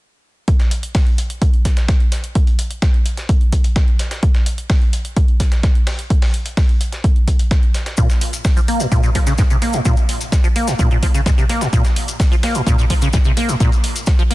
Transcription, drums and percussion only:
0.48 kick, closed hi-hat
0.60 snare, closed hi-hat
0.71 closed hi-hat
0.83 closed hi-hat
0.95 kick, snare, closed hi-hat, open hi-hat
1.07 closed hi-hat
1.18 closed hi-hat
1.30 closed hi-hat
1.42 kick, closed hi-hat
1.53 closed hi-hat
1.65 kick, snare, closed hi-hat
1.77 snare, closed hi-hat
1.88 kick, snare, closed hi-hat
2.00 closed hi-hat
2.12 snare, closed hi-hat
2.24 closed hi-hat
2.35 kick, closed hi-hat
2.47 closed hi-hat
2.59 closed hi-hat
2.71 closed hi-hat
2.82 kick, snare, closed hi-hat
2.94 closed hi-hat
3.06 closed hi-hat
3.17 snare, closed hi-hat
3.29 kick, closed hi-hat
3.41 closed hi-hat
3.52 kick, closed hi-hat
3.64 closed hi-hat
3.76 kick, snare, closed hi-hat
3.88 closed hi-hat
3.99 snare, closed hi-hat
4.11 snare, closed hi-hat
4.23 kick, closed hi-hat
4.35 snare, closed hi-hat
4.46 closed hi-hat
4.58 closed hi-hat
4.70 kick, snare, closed hi-hat, open hi-hat
4.81 closed hi-hat
4.93 closed hi-hat
5.05 closed hi-hat
5.17 kick, closed hi-hat
5.28 closed hi-hat
5.40 kick, snare, closed hi-hat
5.52 snare, closed hi-hat
5.63 kick, snare, closed hi-hat
5.75 closed hi-hat
5.87 snare, closed hi-hat, open hi-hat
5.99 closed hi-hat
6.10 kick, closed hi-hat
6.22 snare, closed hi-hat, open hi-hat
6.34 closed hi-hat
6.46 closed hi-hat
6.57 kick, snare, closed hi-hat, open hi-hat
6.69 closed hi-hat
6.81 closed hi-hat
6.92 snare, closed hi-hat
7.04 kick, closed hi-hat
7.16 closed hi-hat
7.28 kick, closed hi-hat
7.39 closed hi-hat
7.51 kick, snare, closed hi-hat
7.63 closed hi-hat
7.74 snare, closed hi-hat
7.86 snare, closed hi-hat
7.97 kick, closed hi-hat, maracas
8.10 snare, closed hi-hat, maracas
8.21 closed hi-hat, open hi-hat
8.33 closed hi-hat, maracas
8.44 kick, snare, closed hi-hat, open hi-hat, maracas
8.57 closed hi-hat, maracas
8.68 closed hi-hat, open hi-hat
8.80 closed hi-hat, maracas
8.92 kick, closed hi-hat, maracas
9.03 closed hi-hat, maracas
9.15 kick, snare, closed hi-hat, open hi-hat
9.27 snare, closed hi-hat, maracas
9.38 kick, snare, closed hi-hat, maracas
9.50 closed hi-hat, maracas
9.62 snare, closed hi-hat, open hi-hat
9.73 closed hi-hat, maracas
9.85 kick, closed hi-hat, maracas
9.96 closed hi-hat, maracas
10.09 closed hi-hat, open hi-hat
10.21 closed hi-hat, maracas
10.32 kick, snare, closed hi-hat, maracas
10.44 closed hi-hat, maracas
10.56 closed hi-hat, open hi-hat
10.67 snare, closed hi-hat, maracas
10.79 kick, closed hi-hat, maracas
10.91 closed hi-hat, maracas
11.03 kick, closed hi-hat, open hi-hat
11.14 closed hi-hat, maracas
11.26 kick, snare, closed hi-hat, maracas
11.38 closed hi-hat, maracas
11.49 snare, closed hi-hat, open hi-hat
11.61 snare, closed hi-hat, maracas
11.73 kick, closed hi-hat, maracas
11.84 snare, closed hi-hat, maracas
11.96 closed hi-hat, open hi-hat
12.08 closed hi-hat, maracas
12.20 kick, snare, closed hi-hat, open hi-hat, maracas
12.32 closed hi-hat, maracas
12.43 snare, open hi-hat
12.55 closed hi-hat, maracas
12.67 kick, closed hi-hat, maracas
12.78 closed hi-hat, maracas
12.90 kick, closed hi-hat, open hi-hat
13.02 closed hi-hat, maracas
13.13 kick, snare, closed hi-hat, maracas
13.25 closed hi-hat, maracas
13.37 snare, closed hi-hat, open hi-hat
13.49 closed hi-hat, maracas
13.60 kick, closed hi-hat, maracas
13.72 closed hi-hat, maracas
13.84 closed hi-hat, open hi-hat
13.96 closed hi-hat, maracas
14.06 kick, snare, closed hi-hat, maracas
14.19 closed hi-hat, maracas
14.31 closed hi-hat, open hi-hat

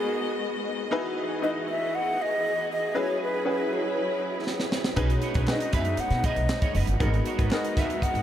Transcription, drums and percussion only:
4.47 snare
4.60 snare
4.72 snare
4.84 snare
4.96 kick, closed hi-hat
5.10 closed hi-hat
5.22 closed hi-hat
5.34 kick, closed hi-hat
5.48 snare, clap
5.60 closed hi-hat
5.73 kick, closed hi-hat
5.85 closed hi-hat
5.97 closed hi-hat
6.10 snare, closed hi-hat
6.24 kick, closed hi-hat
6.36 closed hi-hat
6.49 snare, clap
6.62 kick, closed hi-hat
6.75 open hi-hat
6.87 closed hi-hat
7.00 kick, closed hi-hat
7.14 closed hi-hat
7.26 closed hi-hat
7.39 kick, closed hi-hat
7.51 snare, clap
7.64 closed hi-hat
7.77 kick, snare, closed hi-hat
7.90 closed hi-hat
8.02 kick, closed hi-hat
8.15 closed hi-hat

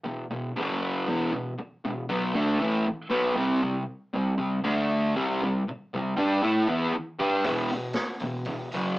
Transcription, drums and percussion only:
7.44 kick, open hi-hat
7.69 open hi-hat
7.93 snare, open hi-hat
8.20 kick, open hi-hat
8.45 kick, open hi-hat
8.72 open hi-hat

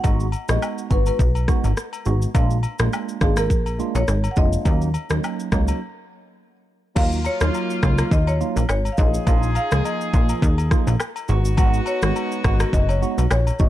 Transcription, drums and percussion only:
0.04 kick, high agogo, shaker
0.20 shaker
0.32 high agogo, shaker
0.48 cross-stick, shaker
0.62 high agogo, low woodblock, shaker
0.78 shaker
0.91 kick, shaker
1.06 high agogo, shaker
1.19 kick, shaker
1.35 high agogo, shaker
1.48 kick, cross-stick, shaker
1.64 high agogo, shaker
1.77 cross-stick, shaker
1.93 high agogo, shaker
2.05 shaker
2.22 shaker
2.35 kick, high agogo, shaker
2.50 shaker
2.63 high agogo, shaker
2.79 cross-stick, shaker
2.93 high agogo, low woodblock, shaker
3.09 shaker
3.21 kick, cross-stick, shaker
3.36 cross-stick, high agogo, shaker
3.50 kick, shaker
3.66 high agogo, shaker
3.80 shaker
3.95 high agogo, shaker
4.08 cross-stick, shaker
4.24 high agogo, shaker
4.36 kick, shaker
4.53 shaker
4.65 kick, high agogo, shaker
4.81 shaker
4.94 high agogo, shaker
5.10 cross-stick, shaker
5.24 high agogo, low woodblock, shaker
5.40 shaker
5.52 kick, cross-stick, shaker
5.68 high agogo, shaker
6.96 kick, crash, high agogo, shaker
7.12 shaker
7.25 high agogo, shaker
7.40 cross-stick, shaker
7.54 high agogo, shaker
7.70 shaker
7.83 kick, cross-stick, shaker
7.98 cross-stick, high agogo, shaker
8.11 kick, shaker
8.27 high agogo, shaker
8.41 shaker
8.57 high agogo, shaker
8.69 cross-stick, low woodblock, shaker
8.85 high agogo, shaker
8.97 kick, shaker
9.14 shaker
9.27 kick, high agogo, shaker
9.43 shaker
9.55 high agogo, shaker
9.71 cross-stick, shaker
9.85 high agogo, shaker
10.01 shaker
10.13 kick, shaker
10.29 high agogo, shaker
10.42 kick, shaker
10.58 high agogo, shaker
10.71 kick, cross-stick, shaker
10.87 high agogo, shaker
11.00 cross-stick, low woodblock, shaker
11.16 high agogo, shaker
11.28 shaker
11.45 shaker
11.57 kick, high agogo, shaker
11.73 shaker
11.86 high agogo, shaker
12.02 cross-stick, shaker
12.16 high agogo, shaker
12.32 shaker
12.44 kick, cross-stick, shaker
12.60 cross-stick, high agogo, shaker
12.73 kick, shaker
12.89 high agogo, shaker
13.03 shaker
13.18 high agogo, shaker
13.31 cross-stick, low woodblock, shaker
13.47 high agogo, shaker
13.59 kick, shaker

